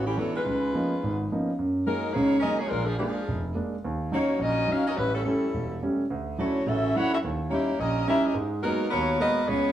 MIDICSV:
0, 0, Header, 1, 3, 480
1, 0, Start_track
1, 0, Key_signature, 6, "major"
1, 0, Tempo, 282087
1, 759, Time_signature, 4, 2, 24, 8
1, 16540, End_track
2, 0, Start_track
2, 0, Title_t, "Saxophone section"
2, 0, Program_c, 0, 65
2, 109, Note_on_c, 0, 52, 69
2, 112, Note_on_c, 0, 67, 80
2, 116, Note_on_c, 0, 61, 65
2, 121, Note_on_c, 0, 57, 65
2, 275, Note_off_c, 0, 52, 0
2, 277, Note_off_c, 0, 67, 0
2, 279, Note_off_c, 0, 61, 0
2, 282, Note_off_c, 0, 57, 0
2, 299, Note_on_c, 0, 54, 71
2, 308, Note_on_c, 0, 64, 71
2, 308, Note_on_c, 0, 69, 79
2, 315, Note_on_c, 0, 59, 72
2, 581, Note_off_c, 0, 54, 0
2, 586, Note_off_c, 0, 64, 0
2, 586, Note_off_c, 0, 69, 0
2, 590, Note_off_c, 0, 59, 0
2, 605, Note_on_c, 0, 71, 85
2, 606, Note_on_c, 0, 63, 72
2, 608, Note_on_c, 0, 56, 69
2, 616, Note_on_c, 0, 65, 69
2, 2151, Note_off_c, 0, 71, 0
2, 2152, Note_off_c, 0, 63, 0
2, 2153, Note_off_c, 0, 56, 0
2, 2157, Note_off_c, 0, 65, 0
2, 3174, Note_on_c, 0, 61, 73
2, 3175, Note_on_c, 0, 70, 85
2, 3180, Note_on_c, 0, 56, 78
2, 3180, Note_on_c, 0, 63, 78
2, 3611, Note_off_c, 0, 63, 0
2, 3617, Note_off_c, 0, 61, 0
2, 3617, Note_off_c, 0, 70, 0
2, 3620, Note_off_c, 0, 56, 0
2, 3631, Note_on_c, 0, 63, 82
2, 3632, Note_on_c, 0, 58, 88
2, 3635, Note_on_c, 0, 68, 88
2, 3636, Note_on_c, 0, 73, 99
2, 4060, Note_off_c, 0, 68, 0
2, 4080, Note_on_c, 0, 68, 80
2, 4084, Note_on_c, 0, 61, 85
2, 4084, Note_on_c, 0, 70, 85
2, 4090, Note_on_c, 0, 75, 98
2, 4119, Note_off_c, 0, 58, 0
2, 4119, Note_off_c, 0, 63, 0
2, 4121, Note_off_c, 0, 73, 0
2, 4373, Note_off_c, 0, 68, 0
2, 4375, Note_off_c, 0, 61, 0
2, 4375, Note_off_c, 0, 70, 0
2, 4378, Note_off_c, 0, 75, 0
2, 4397, Note_on_c, 0, 68, 77
2, 4398, Note_on_c, 0, 63, 75
2, 4398, Note_on_c, 0, 73, 89
2, 4402, Note_on_c, 0, 58, 76
2, 4550, Note_on_c, 0, 65, 82
2, 4554, Note_on_c, 0, 56, 80
2, 4562, Note_on_c, 0, 62, 76
2, 4572, Note_on_c, 0, 70, 94
2, 4596, Note_off_c, 0, 63, 0
2, 4596, Note_off_c, 0, 68, 0
2, 4597, Note_off_c, 0, 73, 0
2, 4598, Note_off_c, 0, 58, 0
2, 4849, Note_off_c, 0, 62, 0
2, 4864, Note_on_c, 0, 68, 81
2, 4870, Note_on_c, 0, 58, 73
2, 4870, Note_on_c, 0, 62, 68
2, 4871, Note_off_c, 0, 65, 0
2, 4873, Note_off_c, 0, 56, 0
2, 4873, Note_on_c, 0, 53, 69
2, 4882, Note_off_c, 0, 70, 0
2, 5046, Note_off_c, 0, 62, 0
2, 5050, Note_off_c, 0, 53, 0
2, 5050, Note_off_c, 0, 68, 0
2, 5051, Note_off_c, 0, 58, 0
2, 5067, Note_on_c, 0, 62, 69
2, 5070, Note_on_c, 0, 53, 69
2, 5070, Note_on_c, 0, 68, 78
2, 5071, Note_on_c, 0, 58, 68
2, 5970, Note_off_c, 0, 62, 0
2, 5972, Note_off_c, 0, 53, 0
2, 5972, Note_off_c, 0, 58, 0
2, 5972, Note_off_c, 0, 68, 0
2, 7034, Note_on_c, 0, 58, 81
2, 7036, Note_on_c, 0, 63, 79
2, 7038, Note_on_c, 0, 73, 92
2, 7039, Note_on_c, 0, 66, 79
2, 7469, Note_off_c, 0, 58, 0
2, 7470, Note_off_c, 0, 63, 0
2, 7471, Note_off_c, 0, 73, 0
2, 7472, Note_off_c, 0, 66, 0
2, 7520, Note_on_c, 0, 61, 89
2, 7520, Note_on_c, 0, 75, 99
2, 7521, Note_on_c, 0, 66, 86
2, 7524, Note_on_c, 0, 70, 89
2, 7984, Note_off_c, 0, 75, 0
2, 7985, Note_off_c, 0, 61, 0
2, 7985, Note_off_c, 0, 66, 0
2, 7986, Note_off_c, 0, 70, 0
2, 8010, Note_on_c, 0, 61, 89
2, 8011, Note_on_c, 0, 66, 91
2, 8011, Note_on_c, 0, 77, 97
2, 8012, Note_on_c, 0, 70, 86
2, 8267, Note_off_c, 0, 61, 0
2, 8278, Note_off_c, 0, 66, 0
2, 8282, Note_off_c, 0, 77, 0
2, 8283, Note_off_c, 0, 70, 0
2, 8288, Note_on_c, 0, 61, 82
2, 8290, Note_on_c, 0, 75, 90
2, 8298, Note_on_c, 0, 66, 76
2, 8302, Note_on_c, 0, 70, 76
2, 8444, Note_off_c, 0, 61, 0
2, 8451, Note_off_c, 0, 75, 0
2, 8456, Note_off_c, 0, 66, 0
2, 8458, Note_off_c, 0, 70, 0
2, 8459, Note_on_c, 0, 55, 79
2, 8464, Note_on_c, 0, 61, 79
2, 8467, Note_on_c, 0, 71, 96
2, 8470, Note_on_c, 0, 64, 77
2, 8726, Note_off_c, 0, 64, 0
2, 8729, Note_off_c, 0, 61, 0
2, 8736, Note_on_c, 0, 69, 82
2, 8737, Note_off_c, 0, 55, 0
2, 8747, Note_on_c, 0, 64, 66
2, 8750, Note_off_c, 0, 71, 0
2, 8750, Note_on_c, 0, 61, 74
2, 8757, Note_on_c, 0, 55, 70
2, 8906, Note_off_c, 0, 69, 0
2, 8913, Note_off_c, 0, 61, 0
2, 8919, Note_off_c, 0, 55, 0
2, 8919, Note_off_c, 0, 64, 0
2, 8927, Note_on_c, 0, 69, 74
2, 8934, Note_on_c, 0, 61, 68
2, 8939, Note_on_c, 0, 55, 67
2, 8940, Note_on_c, 0, 64, 66
2, 9820, Note_off_c, 0, 69, 0
2, 9824, Note_off_c, 0, 61, 0
2, 9827, Note_off_c, 0, 55, 0
2, 9827, Note_off_c, 0, 64, 0
2, 10875, Note_on_c, 0, 64, 74
2, 10877, Note_on_c, 0, 57, 67
2, 10881, Note_on_c, 0, 66, 72
2, 10888, Note_on_c, 0, 73, 83
2, 11309, Note_off_c, 0, 57, 0
2, 11309, Note_off_c, 0, 64, 0
2, 11312, Note_off_c, 0, 66, 0
2, 11315, Note_off_c, 0, 73, 0
2, 11322, Note_on_c, 0, 69, 80
2, 11325, Note_on_c, 0, 61, 80
2, 11329, Note_on_c, 0, 76, 97
2, 11333, Note_on_c, 0, 66, 85
2, 11804, Note_off_c, 0, 69, 0
2, 11805, Note_off_c, 0, 61, 0
2, 11808, Note_off_c, 0, 76, 0
2, 11809, Note_off_c, 0, 66, 0
2, 11834, Note_on_c, 0, 69, 90
2, 11840, Note_on_c, 0, 73, 85
2, 11841, Note_on_c, 0, 78, 98
2, 11845, Note_on_c, 0, 64, 89
2, 12112, Note_off_c, 0, 69, 0
2, 12115, Note_off_c, 0, 73, 0
2, 12115, Note_off_c, 0, 78, 0
2, 12117, Note_off_c, 0, 64, 0
2, 12130, Note_on_c, 0, 76, 84
2, 12135, Note_on_c, 0, 61, 65
2, 12140, Note_on_c, 0, 66, 70
2, 12143, Note_on_c, 0, 69, 66
2, 12207, Note_off_c, 0, 76, 0
2, 12211, Note_off_c, 0, 61, 0
2, 12215, Note_off_c, 0, 66, 0
2, 12217, Note_off_c, 0, 69, 0
2, 12772, Note_on_c, 0, 58, 72
2, 12778, Note_on_c, 0, 73, 85
2, 12782, Note_on_c, 0, 64, 73
2, 12785, Note_on_c, 0, 67, 75
2, 13215, Note_off_c, 0, 58, 0
2, 13218, Note_off_c, 0, 73, 0
2, 13220, Note_off_c, 0, 64, 0
2, 13222, Note_off_c, 0, 67, 0
2, 13268, Note_on_c, 0, 67, 86
2, 13269, Note_on_c, 0, 75, 100
2, 13273, Note_on_c, 0, 61, 84
2, 13274, Note_on_c, 0, 70, 89
2, 13731, Note_off_c, 0, 70, 0
2, 13732, Note_off_c, 0, 61, 0
2, 13732, Note_off_c, 0, 67, 0
2, 13736, Note_off_c, 0, 75, 0
2, 13751, Note_on_c, 0, 70, 86
2, 13751, Note_on_c, 0, 76, 100
2, 13752, Note_on_c, 0, 67, 90
2, 13753, Note_on_c, 0, 61, 87
2, 14010, Note_off_c, 0, 67, 0
2, 14010, Note_off_c, 0, 70, 0
2, 14010, Note_off_c, 0, 76, 0
2, 14011, Note_off_c, 0, 61, 0
2, 14049, Note_on_c, 0, 70, 70
2, 14052, Note_on_c, 0, 61, 75
2, 14052, Note_on_c, 0, 75, 85
2, 14059, Note_on_c, 0, 67, 73
2, 14220, Note_off_c, 0, 70, 0
2, 14221, Note_off_c, 0, 61, 0
2, 14222, Note_off_c, 0, 75, 0
2, 14225, Note_off_c, 0, 67, 0
2, 14677, Note_on_c, 0, 59, 82
2, 14678, Note_on_c, 0, 70, 94
2, 14679, Note_on_c, 0, 54, 84
2, 14684, Note_on_c, 0, 63, 78
2, 15126, Note_off_c, 0, 59, 0
2, 15126, Note_off_c, 0, 70, 0
2, 15127, Note_off_c, 0, 54, 0
2, 15129, Note_off_c, 0, 63, 0
2, 15153, Note_on_c, 0, 66, 91
2, 15154, Note_on_c, 0, 59, 88
2, 15161, Note_on_c, 0, 73, 104
2, 15167, Note_on_c, 0, 70, 92
2, 15603, Note_off_c, 0, 66, 0
2, 15604, Note_off_c, 0, 59, 0
2, 15608, Note_off_c, 0, 73, 0
2, 15610, Note_off_c, 0, 70, 0
2, 15648, Note_on_c, 0, 70, 87
2, 15650, Note_on_c, 0, 75, 102
2, 15652, Note_on_c, 0, 59, 83
2, 15653, Note_on_c, 0, 66, 87
2, 16091, Note_off_c, 0, 70, 0
2, 16092, Note_off_c, 0, 75, 0
2, 16093, Note_off_c, 0, 59, 0
2, 16094, Note_off_c, 0, 66, 0
2, 16125, Note_on_c, 0, 68, 84
2, 16134, Note_on_c, 0, 73, 102
2, 16137, Note_on_c, 0, 65, 91
2, 16141, Note_on_c, 0, 59, 92
2, 16540, Note_off_c, 0, 59, 0
2, 16540, Note_off_c, 0, 65, 0
2, 16540, Note_off_c, 0, 68, 0
2, 16540, Note_off_c, 0, 73, 0
2, 16540, End_track
3, 0, Start_track
3, 0, Title_t, "Grand piano"
3, 0, Program_c, 1, 0
3, 0, Note_on_c, 1, 33, 60
3, 221, Note_off_c, 1, 33, 0
3, 277, Note_on_c, 1, 52, 48
3, 286, Note_on_c, 1, 59, 45
3, 290, Note_on_c, 1, 54, 43
3, 291, Note_on_c, 1, 62, 52
3, 589, Note_off_c, 1, 52, 0
3, 594, Note_off_c, 1, 59, 0
3, 596, Note_off_c, 1, 54, 0
3, 596, Note_off_c, 1, 62, 0
3, 780, Note_on_c, 1, 37, 60
3, 1182, Note_off_c, 1, 37, 0
3, 1256, Note_on_c, 1, 53, 50
3, 1261, Note_on_c, 1, 59, 42
3, 1264, Note_on_c, 1, 58, 44
3, 1273, Note_on_c, 1, 63, 53
3, 1275, Note_on_c, 1, 61, 43
3, 1560, Note_off_c, 1, 53, 0
3, 1562, Note_off_c, 1, 59, 0
3, 1564, Note_off_c, 1, 58, 0
3, 1568, Note_off_c, 1, 63, 0
3, 1569, Note_off_c, 1, 61, 0
3, 1752, Note_on_c, 1, 44, 57
3, 1761, Note_on_c, 1, 32, 58
3, 2150, Note_off_c, 1, 44, 0
3, 2155, Note_off_c, 1, 32, 0
3, 2240, Note_on_c, 1, 53, 46
3, 2244, Note_on_c, 1, 58, 43
3, 2245, Note_on_c, 1, 59, 43
3, 2249, Note_on_c, 1, 61, 41
3, 2252, Note_on_c, 1, 63, 55
3, 2533, Note_off_c, 1, 53, 0
3, 2535, Note_off_c, 1, 58, 0
3, 2535, Note_off_c, 1, 59, 0
3, 2537, Note_off_c, 1, 61, 0
3, 2539, Note_off_c, 1, 63, 0
3, 2697, Note_on_c, 1, 42, 62
3, 3103, Note_off_c, 1, 42, 0
3, 3173, Note_on_c, 1, 54, 50
3, 3178, Note_on_c, 1, 56, 46
3, 3185, Note_on_c, 1, 58, 47
3, 3185, Note_on_c, 1, 63, 57
3, 3480, Note_off_c, 1, 54, 0
3, 3482, Note_off_c, 1, 56, 0
3, 3486, Note_off_c, 1, 58, 0
3, 3486, Note_off_c, 1, 63, 0
3, 3670, Note_on_c, 1, 49, 60
3, 3677, Note_on_c, 1, 37, 57
3, 4070, Note_off_c, 1, 49, 0
3, 4074, Note_off_c, 1, 37, 0
3, 4145, Note_on_c, 1, 56, 46
3, 4146, Note_on_c, 1, 54, 52
3, 4157, Note_on_c, 1, 58, 42
3, 4159, Note_on_c, 1, 63, 58
3, 4446, Note_off_c, 1, 56, 0
3, 4447, Note_off_c, 1, 54, 0
3, 4453, Note_off_c, 1, 58, 0
3, 4454, Note_off_c, 1, 63, 0
3, 4612, Note_on_c, 1, 34, 62
3, 5022, Note_off_c, 1, 34, 0
3, 5091, Note_on_c, 1, 56, 49
3, 5100, Note_on_c, 1, 62, 54
3, 5108, Note_on_c, 1, 58, 47
3, 5400, Note_off_c, 1, 56, 0
3, 5405, Note_off_c, 1, 62, 0
3, 5409, Note_off_c, 1, 58, 0
3, 5581, Note_on_c, 1, 29, 61
3, 5987, Note_off_c, 1, 29, 0
3, 6040, Note_on_c, 1, 56, 49
3, 6045, Note_on_c, 1, 62, 57
3, 6051, Note_on_c, 1, 58, 46
3, 6355, Note_off_c, 1, 56, 0
3, 6358, Note_off_c, 1, 62, 0
3, 6361, Note_off_c, 1, 58, 0
3, 6543, Note_on_c, 1, 39, 66
3, 6948, Note_off_c, 1, 39, 0
3, 7005, Note_on_c, 1, 54, 53
3, 7008, Note_on_c, 1, 61, 48
3, 7013, Note_on_c, 1, 63, 55
3, 7318, Note_off_c, 1, 54, 0
3, 7319, Note_off_c, 1, 61, 0
3, 7322, Note_off_c, 1, 63, 0
3, 7469, Note_on_c, 1, 34, 62
3, 7890, Note_off_c, 1, 34, 0
3, 7956, Note_on_c, 1, 54, 47
3, 7957, Note_on_c, 1, 61, 48
3, 7974, Note_on_c, 1, 63, 56
3, 8273, Note_off_c, 1, 54, 0
3, 8274, Note_off_c, 1, 61, 0
3, 8282, Note_off_c, 1, 63, 0
3, 8467, Note_on_c, 1, 33, 63
3, 8870, Note_off_c, 1, 33, 0
3, 8939, Note_on_c, 1, 55, 50
3, 8942, Note_on_c, 1, 57, 46
3, 8944, Note_on_c, 1, 61, 54
3, 9244, Note_off_c, 1, 55, 0
3, 9246, Note_off_c, 1, 57, 0
3, 9247, Note_off_c, 1, 61, 0
3, 9421, Note_on_c, 1, 28, 57
3, 9827, Note_off_c, 1, 28, 0
3, 9913, Note_on_c, 1, 55, 47
3, 9913, Note_on_c, 1, 57, 47
3, 9916, Note_on_c, 1, 61, 55
3, 10211, Note_off_c, 1, 55, 0
3, 10211, Note_off_c, 1, 57, 0
3, 10213, Note_off_c, 1, 61, 0
3, 10386, Note_on_c, 1, 38, 62
3, 10789, Note_off_c, 1, 38, 0
3, 10864, Note_on_c, 1, 54, 52
3, 10864, Note_on_c, 1, 61, 44
3, 10865, Note_on_c, 1, 62, 46
3, 10867, Note_on_c, 1, 64, 57
3, 11166, Note_off_c, 1, 54, 0
3, 11166, Note_off_c, 1, 61, 0
3, 11167, Note_off_c, 1, 62, 0
3, 11168, Note_off_c, 1, 64, 0
3, 11341, Note_on_c, 1, 33, 64
3, 11341, Note_on_c, 1, 49, 60
3, 11745, Note_off_c, 1, 33, 0
3, 11745, Note_off_c, 1, 49, 0
3, 11836, Note_on_c, 1, 54, 51
3, 11843, Note_on_c, 1, 61, 44
3, 11843, Note_on_c, 1, 62, 45
3, 11856, Note_on_c, 1, 64, 56
3, 12132, Note_off_c, 1, 54, 0
3, 12135, Note_off_c, 1, 61, 0
3, 12135, Note_off_c, 1, 62, 0
3, 12142, Note_off_c, 1, 64, 0
3, 12324, Note_on_c, 1, 39, 65
3, 12717, Note_off_c, 1, 39, 0
3, 12764, Note_on_c, 1, 61, 46
3, 12767, Note_on_c, 1, 55, 51
3, 12779, Note_on_c, 1, 63, 44
3, 12781, Note_on_c, 1, 64, 56
3, 13075, Note_off_c, 1, 61, 0
3, 13077, Note_off_c, 1, 55, 0
3, 13083, Note_off_c, 1, 63, 0
3, 13084, Note_off_c, 1, 64, 0
3, 13253, Note_on_c, 1, 34, 60
3, 13660, Note_off_c, 1, 34, 0
3, 13740, Note_on_c, 1, 55, 49
3, 13744, Note_on_c, 1, 61, 47
3, 13750, Note_on_c, 1, 64, 58
3, 13752, Note_on_c, 1, 63, 47
3, 14043, Note_off_c, 1, 55, 0
3, 14045, Note_off_c, 1, 61, 0
3, 14048, Note_off_c, 1, 63, 0
3, 14048, Note_off_c, 1, 64, 0
3, 14197, Note_on_c, 1, 44, 66
3, 14197, Note_on_c, 1, 56, 67
3, 14611, Note_off_c, 1, 44, 0
3, 14611, Note_off_c, 1, 56, 0
3, 14698, Note_on_c, 1, 56, 52
3, 14709, Note_on_c, 1, 58, 46
3, 14711, Note_on_c, 1, 59, 46
3, 14715, Note_on_c, 1, 66, 56
3, 15001, Note_off_c, 1, 56, 0
3, 15006, Note_off_c, 1, 58, 0
3, 15007, Note_off_c, 1, 59, 0
3, 15009, Note_off_c, 1, 66, 0
3, 15197, Note_on_c, 1, 39, 62
3, 15592, Note_off_c, 1, 39, 0
3, 15655, Note_on_c, 1, 56, 52
3, 15656, Note_on_c, 1, 58, 47
3, 15665, Note_on_c, 1, 66, 57
3, 15668, Note_on_c, 1, 59, 48
3, 15959, Note_off_c, 1, 56, 0
3, 15959, Note_off_c, 1, 58, 0
3, 15964, Note_off_c, 1, 66, 0
3, 15965, Note_off_c, 1, 59, 0
3, 16141, Note_on_c, 1, 37, 62
3, 16540, Note_off_c, 1, 37, 0
3, 16540, End_track
0, 0, End_of_file